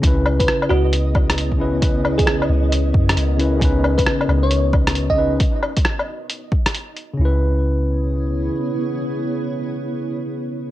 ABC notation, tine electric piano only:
X:1
M:4/4
L:1/8
Q:"Swing 16ths" 1/4=134
K:C#dor
V:1 name="Tine electric piano"
[C,CEB]6- [C,CEB] [C,CEB] | [C,CEB] z6 [C,CEB] | [C,CDB]6- [C,CDB] [C,CDB] | z8 |
[C,CEB]8- | [C,CEB]8 |]